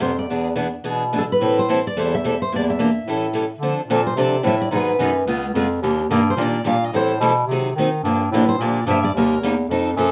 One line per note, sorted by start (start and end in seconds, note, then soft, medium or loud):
0.00 0.24 F2 medium
0.00 0.11 C3 medium
0.00 0.11 G3 medium
0.00 0.11 B3 medium
0.00 0.11 E4 medium
0.00 0.11 G4 medium
0.00 0.16 C5 medium
0.19 0.43 D5 medium
0.28 0.72 E2 medium
0.28 0.48 E3 medium
0.28 0.48 B3 medium
0.28 0.48 D4 medium
0.32 0.49 G#4 medium
0.56 0.66 E3 medium
0.56 0.66 B3 medium
0.56 0.66 D4 medium
0.56 0.67 G#4 medium
0.83 1.28 B2 medium
0.83 1.02 E3 medium
0.83 1.03 B3 medium
0.83 1.03 D4 medium
0.83 1.03 G#4 medium
1.13 1.22 E3 medium
1.13 1.23 B3 medium
1.13 1.23 D4 medium
1.13 1.23 G#4 medium
1.18 1.23 A4 medium
1.32 1.56 B4 medium
1.39 1.84 A2 medium
1.39 1.58 E3 medium
1.39 1.59 G3 medium
1.39 1.59 C4 medium
1.39 1.59 E4 medium
1.39 1.59 A4 medium
1.59 1.85 C5 medium
1.69 1.78 E3 medium
1.69 1.78 G3 medium
1.69 1.79 C4 medium
1.69 1.78 E4 medium
1.69 1.78 A4 loud
1.87 1.99 D5 medium
1.95 2.39 E2 medium
1.95 2.14 E3 medium
1.95 2.14 G3 medium
1.95 2.14 C4 medium
1.95 2.14 E4 medium
1.95 2.14 A4 medium
1.95 2.13 C5 medium
2.15 2.41 E5 medium
2.24 2.33 E3 medium
2.24 2.34 G3 medium
2.24 2.34 C4 medium
2.24 2.34 E4 medium
2.24 2.34 A4 medium
2.42 2.52 C5 medium
2.50 2.94 E2 medium
2.50 2.69 E3 medium
2.50 2.70 A#3 medium
2.50 2.70 G4 medium
2.54 2.70 D4 medium
2.54 2.61 D5 medium
2.70 3.23 E5 medium
2.79 2.88 E3 medium
2.79 2.89 A#3 medium
2.79 2.89 D4 medium
2.79 2.89 G4 medium
3.05 3.50 A2 medium
3.05 3.25 E3 medium
3.05 3.25 G3 medium
3.05 3.25 C#4 medium
3.05 3.25 E4 medium
3.10 3.26 A4 medium
3.33 3.43 E3 medium
3.33 3.43 G3 medium
3.33 3.44 C#4 medium
3.33 3.44 E4 medium
3.33 3.44 A4 medium
3.60 3.75 D3 medium
3.60 3.80 D3 medium
3.60 3.80 F3 medium
3.60 3.80 C4 medium
3.60 3.80 D4 medium
3.60 3.80 A4 medium
3.87 4.15 A#2 medium
3.87 3.99 D3 medium
3.87 4.00 F3 medium
3.87 3.99 C4 medium
3.87 4.00 D4 medium
3.87 4.00 A4 medium
4.07 4.18 C5 medium
4.16 4.43 C3 medium
4.16 4.35 D3 medium
4.16 4.35 F3 medium
4.16 4.35 C4 medium
4.16 4.35 D4 medium
4.16 4.36 A4 medium
4.16 4.45 D5 medium
4.43 4.70 A2 medium
4.43 4.54 D3 medium
4.43 4.54 F3 medium
4.43 4.54 C4 medium
4.43 4.54 D4 medium
4.43 4.54 A4 medium
4.43 4.60 E5 loud
4.61 4.66 D5 medium
4.71 4.98 G#2 medium
4.71 4.90 D#3 medium
4.71 4.90 F#3 medium
4.71 4.90 B3 medium
4.71 4.90 D#4 medium
4.71 4.91 G#4 medium
4.76 5.17 B4 medium
4.98 5.25 F#2 medium
4.98 5.09 D#3 medium
4.98 5.10 F#3 medium
4.98 5.10 B3 medium
4.98 5.10 D#4 loud
4.98 5.10 G#4 loud
5.26 5.53 C#2 medium
5.26 5.46 C#3 medium
5.26 5.45 G#3 medium
5.26 5.45 B3 medium
5.26 5.46 F4 medium
5.26 5.46 G#4 medium
5.54 5.81 F2 medium
5.54 5.65 C#3 medium
5.54 5.65 G#3 medium
5.54 5.65 B3 medium
5.54 5.66 F4 medium
5.54 5.65 G#4 medium
5.82 6.09 D#2 medium
5.82 6.01 D#3 medium
5.82 6.01 G3 medium
5.82 6.01 A#3 medium
5.82 6.02 D4 medium
5.82 6.02 G4 medium
6.09 6.36 G2 medium
6.09 6.20 D#3 medium
6.09 6.21 G3 medium
6.09 6.21 A#3 medium
6.09 6.21 D4 medium
6.09 6.21 G4 loud
6.30 6.41 C5 medium
6.36 6.63 A#2 medium
6.36 6.56 D#3 medium
6.36 6.56 G3 medium
6.36 6.56 A#3 medium
6.36 6.56 D4 medium
6.36 6.57 G4 medium
6.41 6.67 D5 medium
6.64 6.91 A#2 medium
6.64 6.75 D#3 medium
6.64 6.75 G3 medium
6.64 6.76 A#3 medium
6.64 6.76 D4 medium
6.64 6.76 G4 medium
6.64 6.84 F5 medium
6.84 6.95 D#5 medium
6.93 7.19 A2 medium
6.93 7.11 E3 medium
6.93 7.12 G3 medium
6.93 7.12 C4 medium
6.93 7.12 E4 medium
6.93 7.12 A4 medium
6.93 7.35 C5 medium
7.20 7.46 B2 medium
7.20 7.31 E3 medium
7.20 7.31 G3 medium
7.20 7.32 C4 medium
7.20 7.32 E4 medium
7.20 7.32 A4 medium
7.47 7.74 C3 medium
7.51 7.68 D#3 medium
7.51 7.68 F#3 medium
7.51 7.69 C4 medium
7.51 7.69 D#4 medium
7.51 7.68 G#4 medium
7.75 8.02 D#3 medium
7.75 7.87 D#3 medium
7.75 7.87 F#3 medium
7.75 7.88 C4 medium
7.80 7.88 D#4 medium
7.80 7.88 G#4 medium
8.03 8.30 G2 medium
8.03 8.23 D3 medium
8.03 8.23 F3 medium
8.03 8.23 A#3 medium
8.03 8.23 D4 medium
8.03 8.23 G4 medium
8.31 8.57 A2 medium
8.31 8.43 D3 medium
8.31 8.43 F3 medium
8.31 8.43 A#3 medium
8.35 8.43 D4 medium
8.35 8.43 G4 medium
8.45 8.48 B4 medium
8.45 8.61 C5 medium
8.58 8.85 A#2 medium
8.58 8.78 D3 medium
8.58 8.79 F3 medium
8.58 8.79 A#3 medium
8.58 8.88 D5 medium
8.62 8.79 D4 medium
8.62 8.79 G4 medium
8.86 9.13 G2 medium
8.86 8.97 D3 medium
8.86 8.97 F3 medium
8.86 8.97 A#3 medium
8.86 8.97 D4 medium
8.86 8.97 G4 medium
8.91 9.03 E5 loud
9.04 9.09 D5 medium
9.13 9.40 D#2 medium
9.13 9.34 C3 medium
9.13 9.34 G3 medium
9.13 9.34 A#3 medium
9.18 9.34 D#4 medium
9.18 9.35 G4 medium
9.18 9.56 A#4 medium
9.41 9.68 E2 medium
9.41 9.53 C3 medium
9.41 9.53 G3 medium
9.41 9.53 A#3 medium
9.41 9.53 G4 loud
9.45 9.54 D#4 medium
9.69 9.95 F2 medium
9.69 9.89 F3 medium
9.69 9.89 C4 medium
9.69 9.89 D#4 medium
9.69 9.89 A4 medium
9.96 10.12 F#2 medium
9.96 10.07 F3 medium
9.96 10.08 C4 medium
9.96 10.08 D#4 medium
9.96 10.08 A4 medium